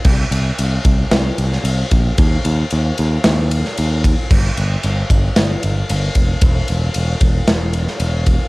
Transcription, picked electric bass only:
\new Staff \with { instrumentName = "Picked electric bass" } { \clef bass \time 4/4 \key g \minor \tempo 4 = 113 c,8 c,8 c,8 c,8 c,8 c,8 c,8 bes,,8 | ees,8 ees,8 ees,8 ees,8 ees,4 ees,4 | g,,8 g,,8 g,,8 g,,8 g,,8 g,,8 g,,8 f,,8 | e,,8 e,,8 e,,8 e,,8 e,,4 e,,4 | }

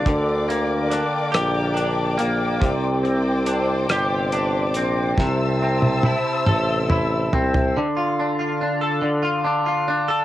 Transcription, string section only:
\new Staff \with { instrumentName = "String section" } { \time 6/8 \key d \minor \tempo 4. = 47 << { <d'' g'' d'''>2.~ | <d'' g'' d'''>2. | <e'' a'' e'''>2. | r2. | } \\ { bes'2. | c''2. | c''2. | r2. | } >> }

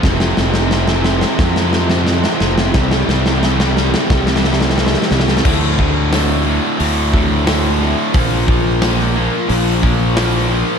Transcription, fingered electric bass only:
\new Staff \with { instrumentName = "Fingered electric bass" } { \clef bass \time 4/4 \key d \minor \tempo 4 = 89 f,,8 f,,4. f,4. f,,8 | c,8 c,4. c,4. c,8 | d,2 d,2 | bes,,2 bes,,2 | }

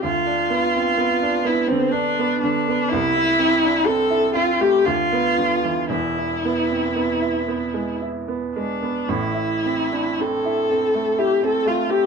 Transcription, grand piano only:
\new Staff \with { instrumentName = "Grand piano" } { \time 3/4 \key a \minor \tempo 4 = 61 d,16 d'16 b16 c'16 b16 d'16 b16 d16 d'16 b16 d16 b16 | c,16 e'16 c'16 d'16 c'16 e'16 c'16 a16 d,16 b16 d16 e16 | <e,, e,>16 e'16 b16 c'16 b16 e'16 b16 gis16 e'16 b16 gis16 b16 | <a,, a,>16 e'16 c'16 d'16 c'16 e'16 c'16 a16 e'16 c'16 a16 c'16 | }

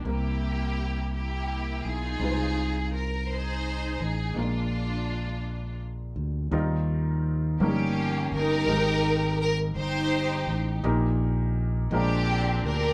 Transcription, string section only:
\new Staff \with { instrumentName = "String section" } { \time 6/8 \key ees \major \tempo 4. = 56 << { g'4. g'4 aes'8~ | aes'4 bes'8 c''4 aes'8 | f'2 r4 | r4. g'4 bes'8~ |
bes'4 bes'8 c''4 r8 | r4. g'4 bes'8 | } \\ { <bes e'>4. <bes e'>4 <ees' f'>8~ | <ees' f'>4 r8 <ees' aes'>4. | <aes d'>2 r4 | r4. <bes des'>4 <ees' g'>8~ |
<ees' g'>4 r8 <ees' g'>4. | r4. <c' d'>4 <d' g'>8 | } >> }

